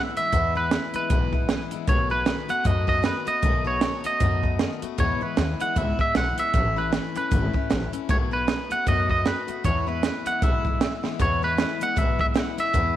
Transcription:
Already playing: E3 G#3 B3 E4
0.16 E3 G#3 B3 E4 E5, muted upright bass stroke, closed hi-hat
0.32 E2 B2 E3 G#3 B3 E4, kick, closed hi-hat
0.55 E3 G#3 B3 E4 B4
0.71 E3 G#3 B3 E4, snare, closed hi-hat
0.94 E3 G#3 B3 E4 B4, muted upright bass stroke, closed hi-hat
1.10 B1 E2 B2 E3 G#3 B3 E4, kick, closed hi-hat
1.32 E3 G#3 B3 E4, kick
1.49 E3 G#3 B3 E4, snare, closed hi-hat
1.71 E3 G#3 B3 E4, muted upright bass stroke, closed hi-hat
1.87 B1 B2 D#3 A3 B3 F#4 C#5, kick, closed hi-hat
2.10 A3 B3 F#4 B4
2.25 D#3 A3 B3 F#4, snare, closed hi-hat
2.48 A3 B3 F#4 F#5, muted upright bass stroke, closed hi-hat
2.64 F#2 B2 D#3 A3 B3 F#4 D#5, kick, closed hi-hat
2.87 A3 B3 F#4 D#5, kick
3.03 D#3 A3 B3 B4, snare, closed hi-hat
3.25 A3 B3 F#4 D#5, muted upright bass stroke, closed hi-hat
3.42 B1 B2 D#3 A3 B3 F#4, kick, closed hi-hat
3.64 A3 B3 F#4 C#5
3.81 D#3 A3 B3 F#4, snare, closed hi-hat
4.04 A3 B3 F#4 D#5, muted upright bass stroke, closed hi-hat
4.20 F#2 B2 D#3 A3 B3 F#4, kick, closed hi-hat
4.43 A3 B3 F#4, kick
4.59 D#3 A3 B3 F#4, snare, closed hi-hat
4.82 A3 B3 F#4, muted upright bass stroke, closed hi-hat
4.98 E2 B2 E3 G#3 B3 E4 C#5, kick, closed hi-hat
5.21 E3 G#3 B3 E4 B4, muted upright bass stroke
5.37 D#2 E3 G#3 B3 E4, snare, closed hi-hat
5.60 E3 G#3 B3 E4 F#5, closed hi-hat
5.76 C#2 E2 B2 E3 G#3 B3 E4 E5, kick, closed hi-hat
5.99 E3 G#3 B3 E4 E5, muted upright bass stroke, kick
6.15 B1 E3 G#3 B3 E4 F#5, snare, closed hi-hat
6.37 E3 G#3 B3 E4 E5, muted upright bass stroke, closed hi-hat
6.54 A1 A2 E3 A3 C#4 E4, kick, closed hi-hat
6.76 A3 C#4 E4 B4
6.92 E3 A3 C#4, snare, closed hi-hat
7.15 A3 C#4 E4 B4, muted upright bass stroke, closed hi-hat
7.31 G#1 A2 E3 A3 C#4 E4, kick, closed hi-hat
7.53 A3 C#4 E4, kick
7.70 A1 E3 A3 C#4 E4, snare, closed hi-hat
7.93 A3 C#4 E4, muted upright bass stroke, closed hi-hat
8.09 B1 B2 D#3 A3 B3 F#4 C#5, kick, closed hi-hat
8.31 A3 B3 F#4 B4
8.47 D#3 A3 B3 F#4, snare, closed hi-hat
8.70 A3 B3 F#4 F#5, muted upright bass stroke, closed hi-hat
8.86 F#2 B2 D#3 A3 B3 F#4 D#5, kick, closed hi-hat
9.09 A3 B3 F#4 D#5, kick
9.25 D#3 A3 B3 F#4 B4, snare, closed hi-hat
9.47 A3 B3 F#4, muted upright bass stroke, closed hi-hat
9.64 E2 B2 E3 G#3 B3 E4 C#5, kick, closed hi-hat
9.87 E3 G#3 B3 E4 B4
10.03 E3 G#3 B3 E4, snare, closed hi-hat
10.26 E3 G#3 B3 E4 F#5, muted upright bass stroke, closed hi-hat
10.42 B1 E2 B2 E3 G#3 B3 E4 E5, kick, closed hi-hat
10.65 E3 G#3 B3 E4, kick
10.80 E3 G#3 B3 E4, snare, closed hi-hat
11.03 E3 G#3 B3 E4, muted upright bass stroke, snare
11.19 E2 B2 E3 G#3 B3 E4 C#5, kick, closed hi-hat
11.42 E3 G#3 B3 E4 B4
11.57 E3 G#3 B3 E4, snare, closed hi-hat
11.80 E3 G#3 B3 E4 F#5, muted upright bass stroke, closed hi-hat
11.96 B1 E2 B2 E3 G#3 B3 E4 E5, kick, closed hi-hat
12.19 E3 G#3 B3 E4 E5, kick
12.34 E3 G#3 B3 E4 F#5, snare, closed hi-hat
12.58 E3 G#3 B3 E4 E5, muted upright bass stroke, closed hi-hat
12.73 E2 B2 E3 G#3 B3 E4, kick, closed hi-hat

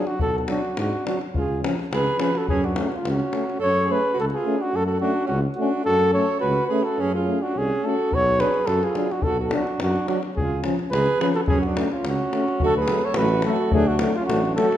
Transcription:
0.06 D4 F#4, davul high
0.17 F#4, davul low
0.21 B1 A4
0.33 F#4
0.39 A4
0.47 F#3 D4 F#4, davul high
0.65 davul high
0.76 G#2 D4 F#4, davul high
0.93 davul high
1.04 F#3 D4 F#4, davul high
1.21 davul high
1.31 C#2 F4, davul low
1.38 G#4
1.61 F3 C#4, davul high
1.79 davul high
1.91 C#2 G#4 B4, davul high
2.07 davul high
2.18 F3 C#4 G#4, davul high
2.22 B4
2.35 F#4 A4, davul high
2.48 F#2 C#4 G#4, davul low
2.64 D4 F#4, davul high
2.76 A3 C#4, davul high
2.91 C#4, davul high
2.95 F4
3.05 C#2 C#4, davul high
3.10 F#4
3.20 davul high
3.31 A3 C#4, davul high
3.50 davul high
3.59 F#2 A4 C#5
3.86 A3 C#4 G#4
3.92 B4
4.14 F#4
4.18 C#2 A4
4.30 F4 G#4
4.45 A3 C#4
4.57 D4
4.62 F#4
4.71 F#2 F#4
4.76 A4
4.86 F#4 A4
5.00 A3 C#4 D4 F#4
5.25 C#4 F#4
5.30 C#2
5.55 A3 D4 F#4
5.60 C#4
5.85 F#2 F#4 A4
6.13 A3 C#4 A4 C#5
6.40 C#2 F#4 B4
6.67 A3 G#4 B4
6.71 C#4
6.83 F#4 A4
6.98 F#2 C#4 G#4
7.15 F4 G#4
7.27 A3 C#4
7.41 D4 F#4
7.55 C2 C#4 G#4
7.83 A3 C#4 F#4 A4
8.12 B1 F#4 C#5, davul low
8.40 F#3 D4 G#4 B4, davul high
8.54 davul high
8.66 F#2 F#4 A4, davul high
8.83 F4 G#4, davul high
8.95 F#3 D4, davul high
9.11 D4 F#4, davul high
9.22 B1 F#4 A4, davul low
9.39 F#4
9.43 A4
9.51 F#3 D4, davul high
9.56 F#4
9.67 davul high
9.79 F#2 D4 F#4, davul high
9.96 davul high
10.07 F#3 D4 F#4, davul high
10.23 davul high
10.36 C#2 F4 G#4, davul low
10.64 F3 C#4, davul high
10.79 davul high
10.91 C#2 G#4 B4, davul high
11.06 davul high
11.20 F3 C#4 G#4 B4, davul high
11.34 F#4 A4, davul high
11.48 F#2 C#4 G#4, davul low
11.61 D4 F#4, davul high
11.76 A3 C#4, davul high
11.91 C#4 F4, davul high
12.04 C#2 C#4, davul high
12.08 F#4
12.19 davul high
12.32 A3 C#4, davul high
12.48 davul high
12.60 D2 F#3 A3 F#4, davul low
12.65 A4
12.77 G#4 B4
12.88 F#3 A3, davul high
13.01 C#5, davul high
13.05 A4
13.14 A1 F#3 A3 F#4 B4, davul high
13.29 davul high
13.42 F#3 F#4 A4, davul high
13.46 A3
13.56 davul high
13.71 D2 F#3 A3 G#4, davul low
13.76 D4
13.88 D4 F#4
13.99 F#3 A3, davul high
14.15 C#4 F4, davul high
14.26 A1 F#3 A3 F#4, davul high
14.31 D4
14.45 davul high
14.55 F#3 A3 A4, davul high
14.60 F#4
14.72 davul high

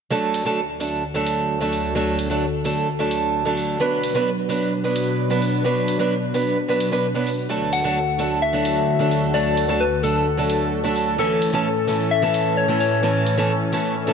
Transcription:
0.10 D2 D3 F#3 A3 D4 F#4 A4
0.34 open hi-hat
0.45 F#3 A3 D4 A4
0.80 F#3 A3 D4 A4, open hi-hat
1.14 F#3 A3 D4 A4
1.27 open hi-hat
1.60 F#3 A3 D4 A4
1.73 open hi-hat
1.95 F#3 A3 D4 A4
2.19 open hi-hat
2.30 F#3 A3 D4 A4
2.64 F#3 A3 D4 A4, open hi-hat
2.99 F#3 A3 D4 A4
3.11 open hi-hat
3.45 F#3 A3 D4 A4
3.57 open hi-hat
3.80 B2 F#3 B3 D4 B4
4.04 open hi-hat
4.14 F#3 B3 D4 B4
4.49 F#3 B3 D4 B4, open hi-hat
4.84 F#3 B3 D4 B4
4.96 open hi-hat
5.30 F#3 B3 D4 B4
5.42 open hi-hat
5.64 F#3 B3 D4 B4
5.88 open hi-hat
5.99 F#3 B3 D4 B4
6.34 F#3 B3 D4 B4, open hi-hat
6.68 F#3 B3 D4 B4
6.80 open hi-hat
6.91 F#3 B3 D4 B4
7.15 F#3 B3 D4 B4
7.27 open hi-hat
7.49 D2 D3 F#3 A3 D4 F#4 A4
7.73 F#5, open hi-hat
7.84 F#3 A3 D4 A4
8.18 F#3 A3 D4 A4, open hi-hat
8.42 E5
8.53 F#3 A3 D4 A4
8.65 open hi-hat
8.99 F#3 A3 D4 A4
9.11 open hi-hat
9.34 F#3 A3 D4 A4 D5
9.57 open hi-hat
9.68 F#3 A3 D4 A4
9.80 B4
10.03 F#3 A3 D4 A4, open hi-hat
10.38 F#3 A3 D4 A4
10.50 open hi-hat
10.84 F#3 A3 D4 A4
10.96 open hi-hat
11.18 A2 E3 A3 C#4 A4
11.42 open hi-hat
11.53 E3 A3 C#4 A4
11.87 E3 A3 C#4 A4, open hi-hat
12.11 E5
12.22 E3 A3 C#4 A4
12.34 open hi-hat
12.57 C#5
12.68 E3 A3 C#4 A4
12.80 C#5, open hi-hat
13.03 E3 A3 C#4 A4
13.27 open hi-hat
13.38 E3 A3 C#4 A4
13.72 E3 A3 C#4 A4, open hi-hat
13.96 swell
14.07 E3 A3 C#4 A4

